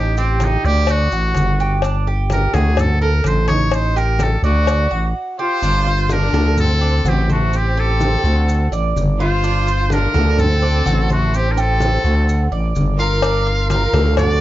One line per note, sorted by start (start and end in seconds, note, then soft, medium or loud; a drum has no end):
0.00 0.58 A1 medium
0.00 0.16 D#4 medium
0.00 0.17 G4 medium
0.17 0.46 C4 medium
0.17 0.63 G4 medium
0.17 high conga soft
0.17 maracas medium
0.40 cowbell medium
0.40 high conga medium
0.40 maracas medium
0.44 0.67 D#4 medium
0.65 1.08 D2 loud
0.65 0.92 G4 loud
0.65 1.11 D5 medium
0.65 high conga soft
0.65 maracas soft
0.87 1.84 F#4 loud
0.87 cowbell loud
0.87 high conga soft
0.87 maracas medium
1.12 1.34 A1 medium
1.12 1.58 F#4 medium
1.12 high conga soft
1.12 maracas medium
1.35 2.48 G1 loud
1.35 cowbell medium
1.35 high conga medium
1.35 maracas medium
1.59 1.83 G4 medium
1.59 high conga soft
1.59 maracas soft
1.82 2.06 D4 medium
1.82 cowbell loud
1.82 high conga soft
1.82 maracas medium
2.07 2.53 G4 medium
2.07 high conga soft
2.30 2.55 A#4 medium
2.30 cowbell medium
2.30 high conga medium
2.30 maracas medium
2.54 3.21 D2 loud
2.54 3.00 F#4 medium
2.54 2.82 G#4 medium
2.54 cowbell medium
2.54 high conga loud
2.54 maracas soft
2.77 3.01 A4 medium
2.77 cowbell loud
2.77 high conga soft
2.77 low conga loud
2.77 maracas medium
3.02 3.48 A4 medium
3.02 3.28 A#4 loud
3.02 high conga soft
3.24 4.37 A1 medium
3.24 3.47 C5 medium
3.24 cowbell medium
3.24 high conga medium
3.24 maracas medium
3.48 3.95 D#4 medium
3.48 3.76 C#5 loud
3.48 cowbell medium
3.48 high conga medium
3.48 maracas soft
3.71 3.98 C5 medium
3.71 cowbell loud
3.71 maracas medium
3.96 4.42 G4 medium
3.96 4.24 A#4 loud
3.96 high conga soft
3.96 maracas medium
4.19 4.44 A4 medium
4.19 cowbell medium
4.19 high conga loud
4.19 maracas medium
4.43 4.87 D2 loud
4.43 5.12 F#4 loud
4.43 4.90 D5 medium
4.43 high conga soft
4.43 maracas soft
4.67 cowbell loud
4.67 high conga soft
4.67 maracas medium
4.91 5.14 A1 medium
4.91 5.37 F#4 medium
4.91 high conga soft
5.39 6.06 F4 loud
5.39 5.62 G4 medium
5.39 6.13 C5 loud
5.62 6.30 G1 loud
5.62 5.86 D4 medium
5.62 high conga soft
5.62 maracas medium
5.86 6.33 F4 medium
5.86 high conga soft
6.09 6.58 D4 medium
6.09 6.59 A#4 loud
6.09 high conga loud
6.09 maracas medium
6.33 7.01 D2 loud
6.33 6.80 A4 medium
6.33 high conga loud
6.33 maracas soft
6.57 7.03 C4 medium
6.57 7.10 A4 loud
6.57 high conga soft
6.57 low conga medium
6.57 maracas medium
6.81 7.04 D4 medium
6.81 high conga soft
7.04 8.17 A1 medium
7.04 7.30 C4 medium
7.04 7.28 F#4 medium
7.04 7.31 G4 medium
7.04 high conga medium
7.04 maracas medium
7.28 7.52 A3 medium
7.28 7.58 F#4 medium
7.28 7.76 C5 medium
7.28 high conga medium
7.28 maracas soft
7.52 7.78 C4 medium
7.52 7.81 G4 medium
7.52 high conga soft
7.52 maracas medium
7.77 8.73 C4 medium
7.77 8.23 G4 medium
7.77 8.73 A4 loud
7.77 high conga soft
8.00 high conga loud
8.00 maracas medium
8.24 8.68 D2 loud
8.24 8.71 F#4 medium
8.24 high conga soft
8.24 maracas soft
8.49 high conga soft
8.49 maracas medium
8.72 8.94 A1 medium
8.72 9.18 D5 medium
8.72 high conga soft
8.72 maracas medium
8.96 10.08 G1 medium
8.96 high conga medium
8.96 maracas medium
9.19 9.87 F4 loud
9.19 9.43 F4 medium
9.19 9.94 C5 loud
9.19 high conga soft
9.19 maracas soft
9.44 9.66 D4 medium
9.44 high conga soft
9.44 maracas medium
9.67 10.13 F4 medium
9.67 high conga soft
9.67 maracas medium
9.90 10.38 D4 medium
9.90 10.41 A#4 loud
9.90 high conga loud
9.90 maracas medium
10.14 10.82 D2 loud
10.14 10.61 A4 medium
10.14 high conga loud
10.14 maracas soft
10.39 11.10 C4 medium
10.39 11.10 A4 loud
10.39 high conga soft
10.39 low conga loud
10.39 maracas medium
10.62 10.85 D4 medium
10.62 high conga soft
10.86 11.98 A1 loud
10.86 11.09 F#4 medium
10.86 high conga medium
10.86 maracas medium
11.10 11.32 A3 medium
11.10 11.37 F#4 medium
11.10 11.56 C5 medium
11.10 high conga medium
11.10 maracas soft
11.34 11.51 C4 medium
11.34 11.53 G4 medium
11.34 maracas medium
11.49 11.57 D4 medium
11.49 11.61 A#4 medium
11.57 12.53 C4 medium
11.57 12.03 G4 medium
11.57 12.53 A4 loud
11.57 high conga soft
11.57 maracas medium
11.80 high conga loud
11.80 maracas medium
12.04 12.48 D2 loud
12.04 12.50 F#4 medium
12.04 high conga soft
12.04 maracas soft
12.29 high conga soft
12.29 maracas medium
12.51 12.74 A1 medium
12.51 12.98 D5 medium
12.51 high conga soft
12.75 13.88 G1 medium
12.75 high conga medium
12.75 maracas medium
12.98 13.22 F4 medium
12.98 13.66 A#4 medium
12.98 13.66 F5 loud
12.98 maracas soft
13.22 13.46 D4 medium
13.22 cowbell loud
13.22 high conga soft
13.22 maracas medium
13.47 13.92 F4 medium
13.47 high conga soft
13.70 14.14 A#4 medium
13.70 14.14 F5 loud
13.70 cowbell medium
13.70 high conga loud
13.70 maracas medium
13.93 14.41 D2 loud
13.93 14.40 A4 medium
13.93 cowbell medium
13.93 high conga loud
13.93 maracas soft
14.16 14.41 F#4 medium
14.16 14.41 D5 loud
14.16 cowbell loud
14.16 high conga soft
14.16 low conga loud
14.16 maracas medium